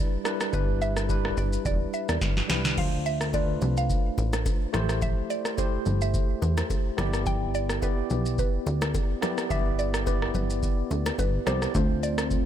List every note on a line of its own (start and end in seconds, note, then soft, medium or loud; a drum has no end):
0.00 0.24 G3 medium
0.00 0.25 D4 medium
0.00 0.26 E4 medium
0.00 0.27 B4 loud
0.00 0.22 D5 medium
0.24 0.44 G3 medium
0.24 0.44 D4 medium
0.24 0.44 E4 medium
0.24 0.45 B4 medium
0.24 cross-stick loud
0.24 shaker medium
0.41 cross-stick loud
0.41 shaker medium
0.52 1.33 G1 loud
0.52 0.89 G3 medium
0.52 0.90 D4 medium
0.52 0.90 E4 medium
0.52 0.82 B4 loud
0.52 0.90 B4 medium
0.52 kick loud
0.52 shaker medium
0.82 1.34 E5 loud
0.82 shaker medium
0.97 cross-stick medium
0.97 shaker medium
1.08 1.81 G3 medium
1.08 1.82 D4 medium
1.08 1.82 E4 medium
1.08 1.83 B4 medium
1.08 kick medium
1.08 shaker medium
1.25 cross-stick medium
1.37 1.58 G1 medium
1.37 1.64 D5 loud
1.37 shaker medium
1.53 shaker medium
1.65 1.86 E1 loud
1.65 1.92 D5 loud
1.65 kick loud
1.65 shaker medium
1.94 2.08 E5 medium
1.94 shaker soft
2.09 2.18 E2 medium
2.09 2.47 D5 medium
2.09 cross-stick loud
2.09 shaker medium
2.21 2.42 G1 loud
2.21 kick loud
2.21 snare medium
2.21 shaker medium
2.37 snare medium
2.48 2.79 C2 medium
2.48 2.68 G3 medium
2.48 2.68 D4 medium
2.48 2.69 E4 medium
2.48 2.69 B4 medium
2.48 snare medium
2.48 shaker medium
2.65 snare medium
2.65 shaker medium
2.76 3.58 D2 loud
2.76 3.13 A3 medium
2.76 3.14 D4 medium
2.76 3.14 F4 medium
2.76 3.15 C5 medium
2.76 3.07 F5 loud
2.76 kick loud
2.76 crash medium
2.76 low conga medium
3.06 3.35 E5 loud
3.06 shaker medium
3.21 cross-stick medium
3.21 shaker medium
3.32 4.06 A3 medium
3.32 4.06 D4 medium
3.32 4.06 F4 medium
3.32 4.07 B4 medium
3.32 3.79 D5 medium
3.32 kick medium
3.32 high bongo medium
3.32 shaker medium
3.61 3.93 C2 loud
3.61 low conga medium
3.61 shaker medium
3.77 4.70 F5 medium
3.77 shaker medium
3.90 kick loud
3.90 shaker medium
4.18 4.49 A1 medium
4.18 high bongo medium
4.18 shaker soft
4.33 cross-stick medium
4.33 low bongo medium
4.33 shaker medium
4.46 kick loud
4.46 high bongo medium
4.46 shaker medium
4.73 5.15 A1 loud
4.73 5.42 A3 loud
4.73 5.42 E4 medium
4.73 5.42 G4 medium
4.73 5.43 C5 loud
4.73 cross-stick loud
4.73 low bongo medium
4.73 low conga medium
4.73 shaker medium
4.89 cross-stick medium
4.89 shaker medium
5.02 5.15 E5 loud
5.02 kick loud
5.02 low conga medium
5.02 shaker medium
5.30 5.59 D5 loud
5.30 shaker medium
5.45 cross-stick medium
5.45 shaker medium
5.57 6.30 A3 medium
5.57 6.30 E4 medium
5.57 6.31 G4 medium
5.57 6.03 C5 medium
5.57 6.31 C5 medium
5.57 kick medium
5.57 high bongo medium
5.57 shaker medium
5.86 6.18 G1 medium
5.86 low conga medium
5.86 shaker medium
6.01 6.94 E5 medium
6.01 shaker medium
6.14 kick loud
6.14 shaker medium
6.42 6.62 E2 medium
6.42 high bongo medium
6.42 shaker soft
6.57 cross-stick loud
6.57 low bongo medium
6.57 shaker medium
6.70 kick loud
6.70 high bongo medium
6.70 shaker medium
6.97 7.80 G1 loud
6.97 7.66 B3 medium
6.97 7.66 E4 medium
6.97 7.67 G4 medium
6.97 7.67 D5 loud
6.97 cross-stick loud
6.97 low bongo medium
6.97 low conga medium
6.97 shaker medium
7.13 cross-stick medium
7.13 shaker medium
7.26 7.55 G5 loud
7.26 kick loud
7.26 low conga medium
7.26 shaker medium
7.55 7.83 D5 loud
7.55 shaker medium
7.69 cross-stick medium
7.69 shaker medium
7.81 8.54 B3 medium
7.81 8.55 E4 medium
7.81 8.55 G4 medium
7.81 8.38 B4 medium
7.81 8.55 D5 medium
7.81 kick medium
7.81 high bongo medium
7.81 shaker medium
8.10 8.42 B1 medium
8.10 low conga medium
8.10 shaker medium
8.26 shaker medium
8.38 9.19 B4 medium
8.38 kick loud
8.38 shaker medium
8.66 8.98 D2 medium
8.66 high bongo medium
8.66 shaker soft
8.82 cross-stick loud
8.82 low bongo medium
8.82 shaker medium
8.94 kick loud
8.94 high bongo medium
8.94 shaker medium
9.21 9.41 B3 medium
9.21 9.41 E4 medium
9.21 9.42 G4 medium
9.21 9.42 D5 medium
9.21 cross-stick loud
9.21 low bongo medium
9.21 low conga medium
9.21 shaker medium
9.38 cross-stick medium
9.38 shaker medium
9.49 10.31 G1 loud
9.49 9.86 B3 medium
9.49 9.87 E4 medium
9.49 9.87 G4 medium
9.49 9.87 D5 medium
9.49 9.80 E5 loud
9.49 kick loud
9.49 low conga medium
9.49 shaker medium
9.79 10.08 D5 loud
9.79 shaker medium
9.94 cross-stick loud
9.94 shaker medium
10.05 10.79 B3 medium
10.05 10.79 E4 medium
10.05 10.79 G4 medium
10.05 10.34 B4 medium
10.05 10.80 D5 medium
10.05 kick medium
10.05 high bongo medium
10.05 shaker medium
10.22 cross-stick medium
10.34 10.66 G1 medium
10.34 11.18 B4 medium
10.34 low conga medium
10.34 shaker medium
10.50 shaker medium
10.63 kick loud
10.63 shaker medium
10.91 11.11 D2 medium
10.91 high bongo medium
10.91 shaker soft
11.06 cross-stick medium
11.06 low bongo medium
11.06 shaker medium
11.19 11.39 G1 medium
11.19 11.48 B4 medium
11.19 kick loud
11.19 high bongo medium
11.19 shaker medium
11.46 11.67 C2 loud
11.46 11.65 B3 medium
11.46 11.65 E4 medium
11.46 11.66 G4 medium
11.46 12.05 C5 medium
11.46 11.66 D5 medium
11.46 cross-stick loud
11.46 low bongo medium
11.46 low conga medium
11.46 shaker medium
11.62 cross-stick medium
11.62 shaker medium
11.74 12.46 D2 loud
11.74 12.46 D3 medium
11.74 12.46 A3 medium
11.74 12.46 C4 medium
11.74 12.46 D4 medium
11.74 12.46 F4 medium
11.74 12.46 C5 medium
11.74 kick loud
11.74 shaker medium
12.03 12.46 D5 loud
12.03 shaker medium
12.18 cross-stick loud
12.18 shaker medium
12.31 kick medium
12.31 shaker medium